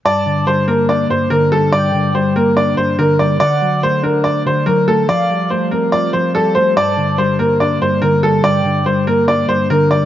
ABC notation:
X:1
M:4/4
L:1/8
Q:1/4=143
K:Gm
V:1 name="Soft synth lead"
a2 z6 | g2 z6 | ^f2 z6 | f2 z4 d c |
a2 z6 | g2 z6 |]
V:2 name="Upright piano"
d2 c B d c B A | d2 c B d c B d | d2 c B d c B A | d2 c B d c A c |
d2 c B d c B A | d2 c B d c B d |]
V:3 name="Clean electric guitar" clef=bass
G,, D, G, B, D G,, D, G, | G,, D, G, B, D G,, D, G, | D, ^F, A, D d D, F, A, | F, G, A, C F F, G, A, |
G,, D, G, B, D G,, D, G, | G,, D, G, B, D G,, D, G, |]